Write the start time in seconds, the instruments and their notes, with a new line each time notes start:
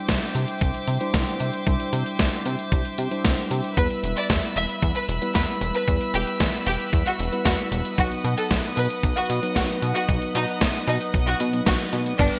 Already playing: tine electric piano G3 D4 E4 C5, string section C5 E5 G5 D6
0.09 analog synth bass C2, kick, snare, closed hi-hat
0.22 closed hi-hat
0.35 analog synth bass C3, closed hi-hat
0.48 closed hi-hat
0.61 analog synth bass C2, kick, closed hi-hat
0.74 closed hi-hat
0.87 analog synth bass C3, closed hi-hat
1.01 tine electric piano G3 D4 E4 C5, closed hi-hat
1.14 analog synth bass C2, kick, snare, closed hi-hat
1.27 closed hi-hat
1.40 analog synth bass C3, closed hi-hat
1.53 closed hi-hat
1.66 analog synth bass C2, tine electric piano G3 D4 E4 C5, kick, closed hi-hat
1.80 closed hi-hat
1.93 analog synth bass C3, closed hi-hat
2.06 closed hi-hat
2.19 analog synth bass C2, kick, snare, closed hi-hat
2.32 closed hi-hat
2.46 analog synth bass C3, closed hi-hat
2.59 closed hi-hat
2.72 analog synth bass C2, kick, closed hi-hat
2.85 closed hi-hat
2.98 analog synth bass C3, closed hi-hat
3.11 tine electric piano G3 D4 E4 C5, closed hi-hat
3.25 analog synth bass C2, kick, snare, closed hi-hat
3.38 closed hi-hat
3.51 analog synth bass C3, closed hi-hat
3.64 closed hi-hat
3.77 analog synth bass E2, tine electric piano G3 B3 E4 B4, violin section B4, string section B4 B5 E6, kick, closed hi-hat
3.90 closed hi-hat
4.03 analog synth bass E1, closed hi-hat
4.17 violin section D5, closed hi-hat
4.30 analog synth bass E2, kick, snare, closed hi-hat
4.43 closed hi-hat
4.56 analog synth bass E1, violin section E5, closed hi-hat
4.69 closed hi-hat
4.82 analog synth bass E2, kick, closed hi-hat
4.96 violin section B4, closed hi-hat
5.09 analog synth bass E1, closed hi-hat
5.22 tine electric piano G3 B3 E4 B4, closed hi-hat
5.35 analog synth bass E2, violin section B4, kick, snare, closed hi-hat
5.48 closed hi-hat
5.61 analog synth bass E1, closed hi-hat
5.74 violin section B4, closed hi-hat
5.88 analog synth bass E2, tine electric piano G3 B3 E4 B4, kick, closed hi-hat
6.01 closed hi-hat
6.14 analog synth bass E1, violin section G4, closed hi-hat
6.27 closed hi-hat
6.40 analog synth bass E2, kick, snare, closed hi-hat
6.53 closed hi-hat
6.67 analog synth bass E1, violin section G4, closed hi-hat
6.80 closed hi-hat
6.93 analog synth bass E2, kick, closed hi-hat
7.06 violin section F#4, closed hi-hat
7.19 analog synth bass E1, closed hi-hat
7.32 tine electric piano G3 B3 E4 B4, closed hi-hat
7.45 analog synth bass E2, violin section F#4, kick, snare, closed hi-hat
7.59 closed hi-hat
7.72 analog synth bass E1, closed hi-hat
7.85 closed hi-hat
7.98 analog synth bass B1, tine electric piano F#3 B3 D#4 B4, violin section F#4, string section D#5 F#5 D#6, kick, closed hi-hat
8.11 closed hi-hat
8.24 analog synth bass B2, closed hi-hat
8.38 violin section A4, closed hi-hat
8.51 analog synth bass B1, kick, snare, closed hi-hat
8.64 closed hi-hat
8.77 analog synth bass B2, violin section B4, closed hi-hat
8.90 closed hi-hat
9.03 analog synth bass B1, kick, closed hi-hat
9.17 violin section F#4, closed hi-hat
9.30 analog synth bass B2, closed hi-hat
9.43 tine electric piano F#3 B3 D#4 B4, closed hi-hat
9.56 analog synth bass B1, violin section F#4, kick, snare, closed hi-hat
9.69 closed hi-hat
9.82 analog synth bass B2, closed hi-hat
9.96 violin section F#4, closed hi-hat
10.09 analog synth bass B1, tine electric piano F#3 B3 D#4 B4, kick, closed hi-hat
10.22 closed hi-hat
10.35 analog synth bass B2, violin section D#4, closed hi-hat
10.48 closed hi-hat
10.61 analog synth bass B1, kick, snare, closed hi-hat
10.74 closed hi-hat
10.87 analog synth bass B2, violin section D#4, closed hi-hat
11.01 closed hi-hat
11.14 analog synth bass B1, kick, closed hi-hat
11.27 violin section F#4, closed hi-hat
11.40 analog synth bass B2, closed hi-hat
11.53 tine electric piano F#3 B3 D#4 B4, closed hi-hat
11.66 analog synth bass B1, violin section F#4, kick, snare, closed hi-hat
11.80 closed hi-hat
11.93 analog synth bass B2, closed hi-hat
12.06 closed hi-hat
12.19 analog synth bass G1, tine electric piano G3 B3 D4 B4, violin section D4, string section B4 D5 G5 D6, kick, closed hi-hat, crash
12.32 closed hi-hat